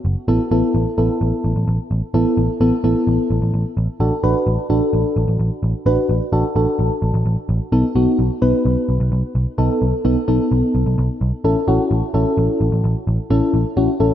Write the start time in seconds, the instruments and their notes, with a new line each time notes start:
0.05 picked electric bass F#1
0.28 picked electric bass A1, fm electric piano B3 E4 A4
0.51 picked electric bass A1, fm electric piano B3 E4 A4
0.75 picked electric bass A1
0.98 picked electric bass A1, fm electric piano B3 E4 A4
1.21 picked electric bass A1
1.44 picked electric bass A1
1.56 picked electric bass A1
1.68 picked electric bass A1
1.91 picked electric bass A1
2.14 picked electric bass A1, fm electric piano B3 E4 A4
2.37 picked electric bass A1
2.61 picked electric bass A1, fm electric piano B3 E4 A4
2.84 picked electric bass A1, fm electric piano B3 E4 A4
3.07 picked electric bass A1
3.30 picked electric bass A1
3.42 picked electric bass A1
3.54 picked electric bass A1
3.77 picked electric bass A1
4.00 picked electric bass A1, fm electric piano D4 F#4 A4
4.23 picked electric bass A1, fm electric piano D4 F#4 B4
4.47 picked electric bass A1
4.70 picked electric bass A1, fm electric piano D4 F#4 A4
4.93 picked electric bass A1
5.16 picked electric bass A1
5.28 picked electric bass A1
5.39 picked electric bass A1
5.63 picked electric bass A1
5.86 picked electric bass A1, fm electric piano D4 F#4 B4
6.09 picked electric bass A1
6.32 picked electric bass A1, fm electric piano D4 F#4 A4
6.56 picked electric bass A1, fm electric piano D4 F#4 A4
6.79 picked electric bass A1
7.02 picked electric bass A1
7.14 picked electric bass A1
7.26 picked electric bass A1
7.49 picked electric bass A1
7.72 picked electric bass B1, fm electric piano B3 D#4 A4
7.95 picked electric bass B1, fm electric piano B3 D#4 F#4
8.19 picked electric bass B1
8.42 picked electric bass B1, fm electric piano B3 D#4 B4
8.65 picked electric bass B1
8.89 picked electric bass B1
9.00 picked electric bass B1
9.12 picked electric bass B1
9.35 picked electric bass B1
9.58 picked electric bass B1, fm electric piano B3 D#4 A4
9.82 picked electric bass B1
10.05 picked electric bass B1, fm electric piano B3 D#4 A4
10.28 picked electric bass B1, fm electric piano B3 D#4 A4
10.51 picked electric bass B1
10.75 picked electric bass B1
10.86 picked electric bass B1
10.98 picked electric bass B1
11.21 picked electric bass B1
11.44 picked electric bass A1, fm electric piano C#4 E4 A4
11.68 picked electric bass A1, fm electric piano C#4 E4 F#4
11.91 picked electric bass A1
12.14 picked electric bass A1, fm electric piano C#4 E4 A4
12.37 picked electric bass A1
12.61 picked electric bass A1
12.72 picked electric bass A1
12.84 picked electric bass A1
13.07 picked electric bass A1
13.30 picked electric bass A1, fm electric piano C#4 E4 A4
13.54 picked electric bass A1
13.77 picked electric bass A1, fm electric piano C#4 E4 F#4
14.00 picked electric bass A1, fm electric piano C#4 E4 A4